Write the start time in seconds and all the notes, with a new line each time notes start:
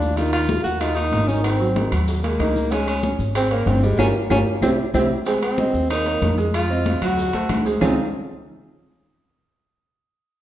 Already playing: D#2 D4 F4 F5
0.02 high bongo, maracas
0.17 D#3 D#4 F4, high bongo, high conga, high timbale, maracas
0.33 F4, high conga, high timbale, claves, maracas
0.49 A#3 A#4, high bongo, high conga, maracas
0.64 D#2 F#4, high conga, maracas
0.80 D#4 F4 D#5, high bongo, high conga, high timbale, claves, maracas
0.96 A#3 D#4 A#4, high conga, high timbale, maracas
1.12 G#1, high bongo, low bongo, high conga, high timbale, low timbale, maracas
1.27 D#3 C#4 D#4, high conga, maracas
1.44 C4, high bongo, high conga, high timbale, claves, maracas
1.60 F#3 F#4, high bongo, high conga, maracas
1.76 D#3 D#4, high bongo, high conga, high timbale, maracas
1.92 D#2 F#3 F#4, high conga, high timbale, claves, maracas
2.08 high bongo, high conga, maracas
2.23 G#3 A#3 G#4, high bongo, high conga, high timbale, maracas
2.39 C#2 D#4 D#5, high bongo, low bongo, high conga, high timbale, claves, maracas
2.56 high bongo, high conga, maracas
2.71 G#3 C#4 G#4, high bongo, high conga, high timbale, maracas
2.87 C#4, high conga, high timbale, claves, maracas
3.03 C#4 C#5, high bongo, high conga, maracas
3.19 G#1, high conga, maracas
3.35 C4 G#4 G#5, high bongo, high conga, high timbale, claves, maracas
3.51 A#3 C#4 C#5, high conga, high timbale, maracas
3.66 G1 C4, high bongo, low bongo, high conga, high timbale, low timbale, maracas
3.83 G3 G#3 G4, high conga, maracas
3.98 G1 C#4 F4 G4 A#4, high bongo, high conga, high timbale, claves, maracas
4.30 G1 C#4 F4 G4 A#4, high bongo, high conga, high timbale, claves, maracas
4.62 C2 C4 E4 G4, high bongo, high conga, high timbale, claves, maracas
4.94 C2 C4 E4 G4, high bongo, high conga, high timbale, claves, maracas
5.26 G#3 C4 G#4 G#5, high bongo, high conga, high timbale, maracas
5.42 C4, high conga, high timbale, claves, maracas
5.58 C4 C5 D#5, high bongo, high conga, maracas
5.74 D#2, high conga, maracas
5.90 A#3 D#4 A#4 C#5, high bongo, high conga, high timbale, claves, maracas
6.06 A#3 A#4 C#5, high conga, high timbale, maracas
6.22 F2, high bongo, low bongo, high conga, high timbale, maracas
6.38 G#3 G#4 G#5, high conga, maracas
6.54 F4, high bongo, high conga, high timbale, claves, maracas
6.70 C4 C5 D#5, high bongo, high conga, maracas
6.85 high bongo, high conga, high timbale, maracas
7.02 D2 F#3 F#4 F#5, high conga, high timbale, claves, maracas
7.17 high bongo, high conga, maracas
7.33 D2 A3 A4 C5, high bongo, high conga, high timbale, maracas
7.49 C#2, high bongo, low bongo, high conga, high timbale, claves, maracas
7.65 G#3 G#4 C5, high bongo, maracas
7.80 C#2 C#3 G#3 C4 C#4 D#4 F4, low bongo, low conga, low timbale, claves, maracas